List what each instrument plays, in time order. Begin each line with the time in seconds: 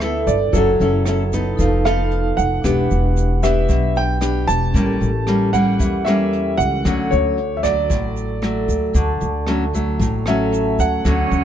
Already playing: upright bass D2, nylon-string guitar D3, vibraphone E4 A4 B4 G5, grand piano E5
0.00 nylon-string guitar B3 E4 A4, cross-stick, closed hi-hat
0.26 upright bass G1, grand piano D5, kick, closed hi-hat, shaker
0.51 upright bass F#1, vibraphone E4 A4 C#5, grand piano A4, kick, closed hi-hat, shaker
0.55 nylon-string guitar F#3 C#4 E4 A4, vibraphone F#5
0.79 upright bass F#1, nylon-string guitar C#4 E4 A4, closed hi-hat, shaker
1.06 nylon-string guitar C#4 E4 A4, cross-stick, closed hi-hat, shaker
1.32 nylon-string guitar B3 D#4 A4, kick, closed hi-hat, shaker
1.55 upright bass F1, vibraphone D#4 A4 B4, kick, closed hi-hat, shaker
1.60 nylon-string guitar F3, vibraphone F5
1.85 nylon-string guitar B3 D#4 A4, grand piano F5, cross-stick, closed hi-hat, shaker
2.11 closed hi-hat
2.37 upright bass F1, grand piano F#5, kick, closed hi-hat, shaker
2.62 upright bass E1, nylon-string guitar E3 B3 D4 G4, vibraphone D4 G4, kick, cross-stick, closed hi-hat, shaker
2.66 vibraphone B4 E5
2.91 upright bass E1, closed hi-hat, shaker
3.17 closed hi-hat, shaker
3.43 nylon-string guitar B3 D4 G4, grand piano E5, kick, cross-stick, shaker
3.69 upright bass B1, nylon-string guitar B2, kick, closed hi-hat, shaker
3.96 grand piano G5, closed hi-hat, shaker
4.21 nylon-string guitar B3 D4 G4, cross-stick, closed hi-hat, shaker
4.48 upright bass E1, grand piano A5, kick, closed hi-hat, shaker
4.71 upright bass A1, nylon-string guitar A2, vibraphone C#4 A4, kick, closed hi-hat
4.75 nylon-string guitar G3 A#3 C#4, vibraphone G4 A#4, shaker
5.00 upright bass A1, closed hi-hat, shaker
5.27 nylon-string guitar G3 A#3 C#4, cross-stick, closed hi-hat
5.53 nylon-string guitar G3 A#3 C#4, grand piano F#5, kick, closed hi-hat, shaker
5.79 upright bass E2, nylon-string guitar E3, kick, closed hi-hat, shaker
6.05 nylon-string guitar G3 A#3 C#4, vibraphone C#4 A4 A#4 G5, grand piano E5, cross-stick, closed hi-hat, shaker
6.33 closed hi-hat
6.58 upright bass C#2, grand piano F#5, kick, closed hi-hat, shaker
6.84 upright bass D2, nylon-string guitar D3 F#3 A3 C#4, vibraphone A4 F#5 C#6, kick, cross-stick, closed hi-hat, shaker
7.11 upright bass D2, grand piano C#5, closed hi-hat, shaker
7.38 closed hi-hat
7.57 grand piano E5
7.63 nylon-string guitar F#3 A3, grand piano D5, kick, cross-stick, closed hi-hat, shaker
7.90 upright bass A1, nylon-string guitar A2, kick, closed hi-hat, shaker
8.17 closed hi-hat, shaker
8.42 nylon-string guitar F#3 A3, cross-stick, closed hi-hat
8.68 upright bass D2, kick, closed hi-hat, shaker
8.94 upright bass D2, nylon-string guitar D3, vibraphone A4 C#6, kick, closed hi-hat, shaker
8.98 vibraphone A5
9.20 upright bass D2, closed hi-hat, shaker
9.47 nylon-string guitar F#3 A3 C#4, cross-stick, closed hi-hat
9.73 nylon-string guitar F#3 A3, kick, closed hi-hat, shaker
9.99 upright bass A1, nylon-string guitar A2, kick, closed hi-hat, shaker
10.26 nylon-string guitar F#3 A3 C#4, grand piano E5, vibraphone F#5, cross-stick, closed hi-hat, shaker
10.52 vibraphone A5, closed hi-hat, shaker
10.79 upright bass D2, grand piano F#5, kick, closed hi-hat, shaker
11.04 upright bass D2, nylon-string guitar D3 F#3 A3 C#4, cello C#4, vibraphone A4 C#6, kick, cross-stick, closed hi-hat, shaker
11.08 vibraphone F#5
11.31 upright bass D2, closed hi-hat, shaker